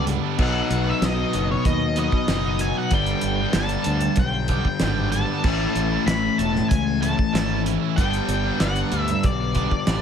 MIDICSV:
0, 0, Header, 1, 7, 480
1, 0, Start_track
1, 0, Tempo, 632244
1, 292, Time_signature, 4, 2, 24, 8
1, 7605, End_track
2, 0, Start_track
2, 0, Title_t, "Lead electric guitar"
2, 0, Program_c, 0, 29
2, 324, Note_on_c, 0, 78, 85
2, 679, Note_off_c, 0, 78, 0
2, 681, Note_on_c, 0, 76, 77
2, 790, Note_off_c, 0, 76, 0
2, 800, Note_on_c, 0, 75, 77
2, 1123, Note_off_c, 0, 75, 0
2, 1149, Note_on_c, 0, 73, 74
2, 1260, Note_off_c, 0, 73, 0
2, 1260, Note_on_c, 0, 75, 87
2, 1504, Note_off_c, 0, 75, 0
2, 1513, Note_on_c, 0, 75, 85
2, 1981, Note_on_c, 0, 80, 87
2, 1998, Note_off_c, 0, 75, 0
2, 2101, Note_off_c, 0, 80, 0
2, 2113, Note_on_c, 0, 78, 85
2, 2228, Note_off_c, 0, 78, 0
2, 2228, Note_on_c, 0, 79, 102
2, 2701, Note_off_c, 0, 79, 0
2, 2707, Note_on_c, 0, 81, 90
2, 3150, Note_off_c, 0, 81, 0
2, 3183, Note_on_c, 0, 79, 94
2, 3882, Note_off_c, 0, 79, 0
2, 3885, Note_on_c, 0, 81, 94
2, 4605, Note_on_c, 0, 83, 98
2, 4631, Note_off_c, 0, 81, 0
2, 4846, Note_on_c, 0, 81, 94
2, 4857, Note_off_c, 0, 83, 0
2, 5077, Note_off_c, 0, 81, 0
2, 5080, Note_on_c, 0, 80, 97
2, 5327, Note_off_c, 0, 80, 0
2, 5330, Note_on_c, 0, 81, 87
2, 5781, Note_off_c, 0, 81, 0
2, 6047, Note_on_c, 0, 79, 103
2, 6537, Note_off_c, 0, 79, 0
2, 6540, Note_on_c, 0, 78, 93
2, 6908, Note_off_c, 0, 78, 0
2, 6918, Note_on_c, 0, 76, 82
2, 7028, Note_off_c, 0, 76, 0
2, 7028, Note_on_c, 0, 74, 78
2, 7605, Note_off_c, 0, 74, 0
2, 7605, End_track
3, 0, Start_track
3, 0, Title_t, "Overdriven electric guitar"
3, 0, Program_c, 1, 29
3, 0, Note_on_c, 1, 43, 91
3, 54, Note_on_c, 1, 50, 67
3, 65, Note_on_c, 1, 55, 77
3, 68, Note_on_c, 1, 59, 84
3, 70, Note_on_c, 1, 62, 84
3, 157, Note_off_c, 1, 62, 0
3, 166, Note_on_c, 1, 62, 74
3, 167, Note_off_c, 1, 43, 0
3, 177, Note_off_c, 1, 55, 0
3, 179, Note_off_c, 1, 59, 0
3, 182, Note_on_c, 1, 59, 72
3, 186, Note_on_c, 1, 55, 62
3, 275, Note_off_c, 1, 62, 0
3, 279, Note_off_c, 1, 50, 0
3, 283, Note_on_c, 1, 47, 95
3, 285, Note_off_c, 1, 55, 0
3, 289, Note_off_c, 1, 59, 0
3, 290, Note_on_c, 1, 54, 86
3, 292, Note_on_c, 1, 59, 107
3, 298, Note_on_c, 1, 63, 107
3, 643, Note_off_c, 1, 63, 0
3, 652, Note_on_c, 1, 63, 68
3, 661, Note_off_c, 1, 59, 0
3, 662, Note_off_c, 1, 54, 0
3, 664, Note_on_c, 1, 59, 66
3, 672, Note_on_c, 1, 54, 63
3, 760, Note_off_c, 1, 47, 0
3, 764, Note_off_c, 1, 54, 0
3, 769, Note_on_c, 1, 47, 88
3, 773, Note_on_c, 1, 54, 98
3, 777, Note_off_c, 1, 63, 0
3, 778, Note_off_c, 1, 59, 0
3, 781, Note_on_c, 1, 59, 106
3, 786, Note_on_c, 1, 63, 109
3, 1000, Note_off_c, 1, 47, 0
3, 1009, Note_on_c, 1, 47, 69
3, 1010, Note_off_c, 1, 54, 0
3, 1019, Note_on_c, 1, 54, 76
3, 1022, Note_off_c, 1, 63, 0
3, 1023, Note_off_c, 1, 59, 0
3, 1026, Note_on_c, 1, 59, 83
3, 1031, Note_on_c, 1, 63, 83
3, 1126, Note_off_c, 1, 63, 0
3, 1129, Note_off_c, 1, 59, 0
3, 1131, Note_off_c, 1, 54, 0
3, 1371, Note_off_c, 1, 47, 0
3, 1494, Note_on_c, 1, 47, 73
3, 1501, Note_on_c, 1, 54, 80
3, 1508, Note_on_c, 1, 59, 86
3, 1520, Note_on_c, 1, 63, 89
3, 1612, Note_off_c, 1, 59, 0
3, 1612, Note_off_c, 1, 63, 0
3, 1615, Note_off_c, 1, 54, 0
3, 1721, Note_off_c, 1, 47, 0
3, 1730, Note_on_c, 1, 47, 86
3, 1736, Note_on_c, 1, 54, 86
3, 1743, Note_on_c, 1, 59, 87
3, 1747, Note_on_c, 1, 63, 96
3, 1833, Note_off_c, 1, 63, 0
3, 1842, Note_on_c, 1, 63, 71
3, 1846, Note_off_c, 1, 59, 0
3, 1851, Note_off_c, 1, 54, 0
3, 1855, Note_on_c, 1, 59, 66
3, 1860, Note_on_c, 1, 54, 63
3, 1962, Note_off_c, 1, 47, 0
3, 1971, Note_on_c, 1, 47, 81
3, 1973, Note_off_c, 1, 54, 0
3, 1977, Note_off_c, 1, 59, 0
3, 1982, Note_off_c, 1, 63, 0
3, 1982, Note_on_c, 1, 54, 73
3, 1986, Note_on_c, 1, 59, 88
3, 1992, Note_on_c, 1, 63, 86
3, 2090, Note_off_c, 1, 63, 0
3, 2097, Note_off_c, 1, 59, 0
3, 2099, Note_on_c, 1, 63, 84
3, 2104, Note_off_c, 1, 54, 0
3, 2107, Note_on_c, 1, 59, 76
3, 2113, Note_on_c, 1, 54, 64
3, 2198, Note_off_c, 1, 47, 0
3, 2202, Note_off_c, 1, 63, 0
3, 2206, Note_off_c, 1, 59, 0
3, 2209, Note_off_c, 1, 54, 0
3, 2211, Note_on_c, 1, 43, 96
3, 2219, Note_on_c, 1, 50, 110
3, 2222, Note_on_c, 1, 55, 101
3, 2229, Note_on_c, 1, 59, 99
3, 2234, Note_on_c, 1, 62, 102
3, 2580, Note_off_c, 1, 62, 0
3, 2586, Note_off_c, 1, 59, 0
3, 2589, Note_on_c, 1, 62, 66
3, 2594, Note_off_c, 1, 55, 0
3, 2595, Note_on_c, 1, 59, 64
3, 2603, Note_on_c, 1, 55, 57
3, 2685, Note_off_c, 1, 43, 0
3, 2692, Note_off_c, 1, 50, 0
3, 2695, Note_on_c, 1, 43, 93
3, 2699, Note_off_c, 1, 55, 0
3, 2701, Note_on_c, 1, 50, 92
3, 2704, Note_off_c, 1, 59, 0
3, 2708, Note_on_c, 1, 55, 93
3, 2709, Note_off_c, 1, 62, 0
3, 2713, Note_on_c, 1, 59, 91
3, 2718, Note_on_c, 1, 62, 105
3, 2924, Note_off_c, 1, 50, 0
3, 2933, Note_on_c, 1, 50, 73
3, 2937, Note_off_c, 1, 55, 0
3, 2939, Note_off_c, 1, 59, 0
3, 2942, Note_off_c, 1, 62, 0
3, 2946, Note_on_c, 1, 55, 81
3, 2948, Note_on_c, 1, 59, 76
3, 2951, Note_on_c, 1, 62, 87
3, 3049, Note_off_c, 1, 62, 0
3, 3051, Note_off_c, 1, 59, 0
3, 3052, Note_off_c, 1, 55, 0
3, 3059, Note_off_c, 1, 50, 0
3, 3174, Note_off_c, 1, 43, 0
3, 3413, Note_on_c, 1, 50, 82
3, 3420, Note_on_c, 1, 55, 79
3, 3423, Note_on_c, 1, 59, 84
3, 3434, Note_on_c, 1, 62, 87
3, 3536, Note_off_c, 1, 62, 0
3, 3539, Note_off_c, 1, 59, 0
3, 3541, Note_off_c, 1, 55, 0
3, 3543, Note_off_c, 1, 50, 0
3, 3651, Note_on_c, 1, 43, 90
3, 3658, Note_on_c, 1, 50, 89
3, 3661, Note_on_c, 1, 55, 83
3, 3670, Note_on_c, 1, 59, 98
3, 3674, Note_on_c, 1, 62, 104
3, 3760, Note_off_c, 1, 62, 0
3, 3769, Note_on_c, 1, 62, 81
3, 3776, Note_off_c, 1, 59, 0
3, 3779, Note_off_c, 1, 55, 0
3, 3785, Note_on_c, 1, 59, 63
3, 3788, Note_on_c, 1, 55, 62
3, 3874, Note_off_c, 1, 50, 0
3, 3883, Note_on_c, 1, 50, 67
3, 3886, Note_off_c, 1, 55, 0
3, 3894, Note_off_c, 1, 62, 0
3, 3895, Note_off_c, 1, 59, 0
3, 3895, Note_on_c, 1, 55, 81
3, 3903, Note_on_c, 1, 62, 89
3, 3904, Note_on_c, 1, 59, 86
3, 3996, Note_off_c, 1, 62, 0
3, 4004, Note_off_c, 1, 59, 0
3, 4005, Note_on_c, 1, 62, 75
3, 4012, Note_off_c, 1, 43, 0
3, 4013, Note_on_c, 1, 59, 66
3, 4019, Note_off_c, 1, 55, 0
3, 4028, Note_on_c, 1, 55, 64
3, 4114, Note_off_c, 1, 50, 0
3, 4115, Note_off_c, 1, 62, 0
3, 4119, Note_off_c, 1, 59, 0
3, 4125, Note_on_c, 1, 45, 100
3, 4127, Note_off_c, 1, 55, 0
3, 4130, Note_on_c, 1, 52, 101
3, 4137, Note_on_c, 1, 57, 93
3, 4140, Note_on_c, 1, 61, 97
3, 4141, Note_on_c, 1, 64, 117
3, 4483, Note_off_c, 1, 64, 0
3, 4492, Note_off_c, 1, 61, 0
3, 4492, Note_on_c, 1, 64, 66
3, 4499, Note_off_c, 1, 57, 0
3, 4501, Note_on_c, 1, 61, 61
3, 4508, Note_on_c, 1, 57, 60
3, 4592, Note_off_c, 1, 45, 0
3, 4599, Note_off_c, 1, 52, 0
3, 4601, Note_on_c, 1, 45, 92
3, 4607, Note_off_c, 1, 57, 0
3, 4607, Note_off_c, 1, 61, 0
3, 4608, Note_on_c, 1, 52, 93
3, 4616, Note_off_c, 1, 64, 0
3, 4616, Note_on_c, 1, 57, 96
3, 4616, Note_on_c, 1, 61, 94
3, 4625, Note_on_c, 1, 64, 97
3, 4836, Note_off_c, 1, 52, 0
3, 4844, Note_off_c, 1, 57, 0
3, 4845, Note_on_c, 1, 52, 77
3, 4853, Note_on_c, 1, 57, 77
3, 4854, Note_off_c, 1, 61, 0
3, 4856, Note_off_c, 1, 64, 0
3, 4863, Note_on_c, 1, 61, 84
3, 4865, Note_on_c, 1, 64, 82
3, 4960, Note_off_c, 1, 64, 0
3, 4966, Note_off_c, 1, 61, 0
3, 4969, Note_off_c, 1, 52, 0
3, 4971, Note_off_c, 1, 57, 0
3, 5087, Note_off_c, 1, 45, 0
3, 5332, Note_on_c, 1, 52, 75
3, 5334, Note_on_c, 1, 57, 76
3, 5345, Note_on_c, 1, 61, 81
3, 5351, Note_on_c, 1, 64, 87
3, 5437, Note_off_c, 1, 61, 0
3, 5440, Note_off_c, 1, 57, 0
3, 5441, Note_off_c, 1, 64, 0
3, 5450, Note_off_c, 1, 52, 0
3, 5563, Note_on_c, 1, 45, 80
3, 5573, Note_on_c, 1, 57, 99
3, 5575, Note_on_c, 1, 52, 93
3, 5576, Note_on_c, 1, 61, 97
3, 5581, Note_on_c, 1, 64, 104
3, 5684, Note_off_c, 1, 64, 0
3, 5693, Note_on_c, 1, 64, 73
3, 5700, Note_off_c, 1, 61, 0
3, 5705, Note_off_c, 1, 57, 0
3, 5709, Note_on_c, 1, 61, 66
3, 5714, Note_on_c, 1, 57, 57
3, 5809, Note_off_c, 1, 52, 0
3, 5818, Note_off_c, 1, 57, 0
3, 5818, Note_on_c, 1, 52, 78
3, 5821, Note_off_c, 1, 61, 0
3, 5825, Note_off_c, 1, 64, 0
3, 5827, Note_on_c, 1, 57, 81
3, 5830, Note_on_c, 1, 61, 79
3, 5835, Note_on_c, 1, 64, 83
3, 5917, Note_off_c, 1, 64, 0
3, 5926, Note_off_c, 1, 61, 0
3, 5926, Note_on_c, 1, 64, 82
3, 5928, Note_off_c, 1, 45, 0
3, 5935, Note_on_c, 1, 61, 72
3, 5940, Note_off_c, 1, 57, 0
3, 5949, Note_on_c, 1, 57, 63
3, 6035, Note_off_c, 1, 64, 0
3, 6040, Note_off_c, 1, 61, 0
3, 6041, Note_off_c, 1, 52, 0
3, 6047, Note_off_c, 1, 57, 0
3, 6055, Note_on_c, 1, 43, 92
3, 6060, Note_on_c, 1, 50, 91
3, 6070, Note_on_c, 1, 55, 90
3, 6072, Note_on_c, 1, 59, 105
3, 6075, Note_on_c, 1, 62, 102
3, 6402, Note_off_c, 1, 62, 0
3, 6411, Note_on_c, 1, 62, 66
3, 6422, Note_off_c, 1, 55, 0
3, 6423, Note_off_c, 1, 59, 0
3, 6426, Note_on_c, 1, 59, 62
3, 6431, Note_on_c, 1, 55, 61
3, 6521, Note_off_c, 1, 43, 0
3, 6526, Note_off_c, 1, 50, 0
3, 6530, Note_on_c, 1, 43, 88
3, 6533, Note_off_c, 1, 55, 0
3, 6535, Note_on_c, 1, 50, 89
3, 6541, Note_off_c, 1, 62, 0
3, 6542, Note_on_c, 1, 55, 92
3, 6544, Note_off_c, 1, 59, 0
3, 6547, Note_on_c, 1, 59, 102
3, 6550, Note_on_c, 1, 62, 110
3, 6769, Note_off_c, 1, 50, 0
3, 6776, Note_off_c, 1, 55, 0
3, 6778, Note_on_c, 1, 50, 73
3, 6785, Note_on_c, 1, 55, 82
3, 6787, Note_off_c, 1, 62, 0
3, 6789, Note_off_c, 1, 59, 0
3, 6792, Note_on_c, 1, 59, 87
3, 6796, Note_on_c, 1, 62, 91
3, 6901, Note_off_c, 1, 55, 0
3, 6901, Note_off_c, 1, 62, 0
3, 6906, Note_off_c, 1, 50, 0
3, 6907, Note_off_c, 1, 59, 0
3, 7013, Note_off_c, 1, 43, 0
3, 7254, Note_on_c, 1, 50, 77
3, 7262, Note_on_c, 1, 55, 82
3, 7270, Note_on_c, 1, 59, 83
3, 7275, Note_on_c, 1, 62, 86
3, 7372, Note_off_c, 1, 55, 0
3, 7373, Note_off_c, 1, 62, 0
3, 7377, Note_off_c, 1, 50, 0
3, 7378, Note_off_c, 1, 59, 0
3, 7493, Note_on_c, 1, 43, 89
3, 7499, Note_on_c, 1, 50, 89
3, 7502, Note_on_c, 1, 55, 94
3, 7507, Note_on_c, 1, 59, 103
3, 7516, Note_on_c, 1, 62, 98
3, 7595, Note_off_c, 1, 62, 0
3, 7605, Note_off_c, 1, 43, 0
3, 7605, Note_off_c, 1, 50, 0
3, 7605, Note_off_c, 1, 55, 0
3, 7605, Note_off_c, 1, 59, 0
3, 7605, End_track
4, 0, Start_track
4, 0, Title_t, "Overdriven electric guitar"
4, 0, Program_c, 2, 29
4, 0, Note_on_c, 2, 43, 87
4, 0, Note_on_c, 2, 50, 80
4, 0, Note_on_c, 2, 55, 85
4, 0, Note_on_c, 2, 59, 98
4, 0, Note_on_c, 2, 62, 90
4, 281, Note_off_c, 2, 43, 0
4, 282, Note_off_c, 2, 50, 0
4, 284, Note_off_c, 2, 55, 0
4, 289, Note_off_c, 2, 62, 0
4, 295, Note_off_c, 2, 59, 0
4, 7605, End_track
5, 0, Start_track
5, 0, Title_t, "Fingered electric bass"
5, 0, Program_c, 3, 33
5, 0, Note_on_c, 3, 37, 84
5, 133, Note_off_c, 3, 37, 0
5, 296, Note_on_c, 3, 35, 94
5, 455, Note_off_c, 3, 35, 0
5, 533, Note_on_c, 3, 35, 88
5, 693, Note_off_c, 3, 35, 0
5, 770, Note_on_c, 3, 35, 93
5, 932, Note_off_c, 3, 35, 0
5, 1019, Note_on_c, 3, 30, 91
5, 1177, Note_off_c, 3, 30, 0
5, 1258, Note_on_c, 3, 39, 88
5, 1577, Note_off_c, 3, 39, 0
5, 1734, Note_on_c, 3, 30, 84
5, 2054, Note_off_c, 3, 30, 0
5, 2215, Note_on_c, 3, 31, 96
5, 2375, Note_off_c, 3, 31, 0
5, 2455, Note_on_c, 3, 31, 80
5, 2615, Note_off_c, 3, 31, 0
5, 2687, Note_on_c, 3, 31, 92
5, 2850, Note_off_c, 3, 31, 0
5, 2933, Note_on_c, 3, 38, 88
5, 3094, Note_off_c, 3, 38, 0
5, 3165, Note_on_c, 3, 35, 97
5, 3488, Note_off_c, 3, 35, 0
5, 3657, Note_on_c, 3, 32, 88
5, 3977, Note_off_c, 3, 32, 0
5, 4133, Note_on_c, 3, 33, 92
5, 4293, Note_off_c, 3, 33, 0
5, 4368, Note_on_c, 3, 33, 80
5, 4530, Note_off_c, 3, 33, 0
5, 4602, Note_on_c, 3, 33, 86
5, 4766, Note_off_c, 3, 33, 0
5, 4847, Note_on_c, 3, 28, 94
5, 5010, Note_off_c, 3, 28, 0
5, 5094, Note_on_c, 3, 37, 91
5, 5415, Note_off_c, 3, 37, 0
5, 5568, Note_on_c, 3, 32, 84
5, 5891, Note_off_c, 3, 32, 0
5, 6058, Note_on_c, 3, 31, 100
5, 6217, Note_off_c, 3, 31, 0
5, 6287, Note_on_c, 3, 31, 93
5, 6449, Note_off_c, 3, 31, 0
5, 6532, Note_on_c, 3, 31, 85
5, 6693, Note_off_c, 3, 31, 0
5, 6772, Note_on_c, 3, 38, 91
5, 6934, Note_off_c, 3, 38, 0
5, 7015, Note_on_c, 3, 35, 97
5, 7336, Note_off_c, 3, 35, 0
5, 7497, Note_on_c, 3, 33, 96
5, 7605, Note_off_c, 3, 33, 0
5, 7605, End_track
6, 0, Start_track
6, 0, Title_t, "Muted overdriven electric guitar strokes"
6, 1135, Note_on_c, 9, 29, 58
6, 1211, Note_off_c, 9, 29, 0
6, 1621, Note_on_c, 9, 29, 58
6, 1697, Note_off_c, 9, 29, 0
6, 3058, Note_on_c, 9, 29, 53
6, 3134, Note_off_c, 9, 29, 0
6, 3546, Note_on_c, 9, 29, 55
6, 3621, Note_off_c, 9, 29, 0
6, 4969, Note_on_c, 9, 29, 50
6, 5045, Note_off_c, 9, 29, 0
6, 5446, Note_on_c, 9, 29, 49
6, 5522, Note_off_c, 9, 29, 0
6, 6910, Note_on_c, 9, 29, 53
6, 6985, Note_off_c, 9, 29, 0
6, 7381, Note_on_c, 9, 29, 53
6, 7457, Note_off_c, 9, 29, 0
6, 7605, End_track
7, 0, Start_track
7, 0, Title_t, "Drums"
7, 53, Note_on_c, 9, 42, 78
7, 129, Note_off_c, 9, 42, 0
7, 292, Note_on_c, 9, 49, 108
7, 295, Note_on_c, 9, 36, 123
7, 368, Note_off_c, 9, 49, 0
7, 371, Note_off_c, 9, 36, 0
7, 536, Note_on_c, 9, 42, 78
7, 612, Note_off_c, 9, 42, 0
7, 776, Note_on_c, 9, 38, 126
7, 776, Note_on_c, 9, 42, 106
7, 852, Note_off_c, 9, 38, 0
7, 852, Note_off_c, 9, 42, 0
7, 1012, Note_on_c, 9, 42, 80
7, 1088, Note_off_c, 9, 42, 0
7, 1254, Note_on_c, 9, 42, 91
7, 1255, Note_on_c, 9, 36, 112
7, 1329, Note_off_c, 9, 42, 0
7, 1331, Note_off_c, 9, 36, 0
7, 1487, Note_on_c, 9, 42, 72
7, 1563, Note_off_c, 9, 42, 0
7, 1613, Note_on_c, 9, 36, 90
7, 1689, Note_off_c, 9, 36, 0
7, 1731, Note_on_c, 9, 42, 95
7, 1732, Note_on_c, 9, 38, 111
7, 1807, Note_off_c, 9, 42, 0
7, 1808, Note_off_c, 9, 38, 0
7, 1967, Note_on_c, 9, 42, 68
7, 2043, Note_off_c, 9, 42, 0
7, 2207, Note_on_c, 9, 42, 94
7, 2212, Note_on_c, 9, 36, 116
7, 2283, Note_off_c, 9, 42, 0
7, 2288, Note_off_c, 9, 36, 0
7, 2327, Note_on_c, 9, 42, 45
7, 2403, Note_off_c, 9, 42, 0
7, 2440, Note_on_c, 9, 42, 69
7, 2516, Note_off_c, 9, 42, 0
7, 2680, Note_on_c, 9, 42, 104
7, 2681, Note_on_c, 9, 38, 125
7, 2756, Note_off_c, 9, 42, 0
7, 2757, Note_off_c, 9, 38, 0
7, 2801, Note_on_c, 9, 42, 44
7, 2877, Note_off_c, 9, 42, 0
7, 2917, Note_on_c, 9, 42, 83
7, 2993, Note_off_c, 9, 42, 0
7, 3041, Note_on_c, 9, 42, 47
7, 3117, Note_off_c, 9, 42, 0
7, 3156, Note_on_c, 9, 42, 87
7, 3168, Note_on_c, 9, 36, 107
7, 3232, Note_off_c, 9, 42, 0
7, 3244, Note_off_c, 9, 36, 0
7, 3401, Note_on_c, 9, 42, 74
7, 3409, Note_on_c, 9, 36, 75
7, 3477, Note_off_c, 9, 42, 0
7, 3485, Note_off_c, 9, 36, 0
7, 3529, Note_on_c, 9, 36, 78
7, 3605, Note_off_c, 9, 36, 0
7, 3641, Note_on_c, 9, 42, 95
7, 3642, Note_on_c, 9, 38, 114
7, 3717, Note_off_c, 9, 42, 0
7, 3718, Note_off_c, 9, 38, 0
7, 3888, Note_on_c, 9, 42, 80
7, 3964, Note_off_c, 9, 42, 0
7, 4128, Note_on_c, 9, 49, 100
7, 4132, Note_on_c, 9, 36, 119
7, 4204, Note_off_c, 9, 49, 0
7, 4208, Note_off_c, 9, 36, 0
7, 4369, Note_on_c, 9, 42, 73
7, 4445, Note_off_c, 9, 42, 0
7, 4613, Note_on_c, 9, 42, 111
7, 4614, Note_on_c, 9, 38, 125
7, 4689, Note_off_c, 9, 42, 0
7, 4690, Note_off_c, 9, 38, 0
7, 4852, Note_on_c, 9, 42, 80
7, 4928, Note_off_c, 9, 42, 0
7, 4977, Note_on_c, 9, 38, 32
7, 5053, Note_off_c, 9, 38, 0
7, 5094, Note_on_c, 9, 42, 100
7, 5095, Note_on_c, 9, 36, 106
7, 5170, Note_off_c, 9, 42, 0
7, 5171, Note_off_c, 9, 36, 0
7, 5335, Note_on_c, 9, 42, 71
7, 5410, Note_off_c, 9, 42, 0
7, 5457, Note_on_c, 9, 36, 83
7, 5533, Note_off_c, 9, 36, 0
7, 5581, Note_on_c, 9, 38, 114
7, 5581, Note_on_c, 9, 42, 95
7, 5657, Note_off_c, 9, 38, 0
7, 5657, Note_off_c, 9, 42, 0
7, 5817, Note_on_c, 9, 42, 74
7, 5892, Note_off_c, 9, 42, 0
7, 6057, Note_on_c, 9, 36, 114
7, 6057, Note_on_c, 9, 42, 100
7, 6133, Note_off_c, 9, 36, 0
7, 6133, Note_off_c, 9, 42, 0
7, 6175, Note_on_c, 9, 42, 44
7, 6251, Note_off_c, 9, 42, 0
7, 6291, Note_on_c, 9, 42, 69
7, 6367, Note_off_c, 9, 42, 0
7, 6530, Note_on_c, 9, 38, 116
7, 6530, Note_on_c, 9, 42, 101
7, 6606, Note_off_c, 9, 38, 0
7, 6606, Note_off_c, 9, 42, 0
7, 6649, Note_on_c, 9, 42, 43
7, 6724, Note_off_c, 9, 42, 0
7, 6770, Note_on_c, 9, 42, 77
7, 6845, Note_off_c, 9, 42, 0
7, 6892, Note_on_c, 9, 42, 48
7, 6968, Note_off_c, 9, 42, 0
7, 7011, Note_on_c, 9, 42, 93
7, 7016, Note_on_c, 9, 36, 105
7, 7087, Note_off_c, 9, 42, 0
7, 7091, Note_off_c, 9, 36, 0
7, 7247, Note_on_c, 9, 42, 70
7, 7255, Note_on_c, 9, 36, 75
7, 7323, Note_off_c, 9, 42, 0
7, 7331, Note_off_c, 9, 36, 0
7, 7375, Note_on_c, 9, 36, 86
7, 7451, Note_off_c, 9, 36, 0
7, 7493, Note_on_c, 9, 42, 102
7, 7494, Note_on_c, 9, 38, 109
7, 7569, Note_off_c, 9, 42, 0
7, 7570, Note_off_c, 9, 38, 0
7, 7605, End_track
0, 0, End_of_file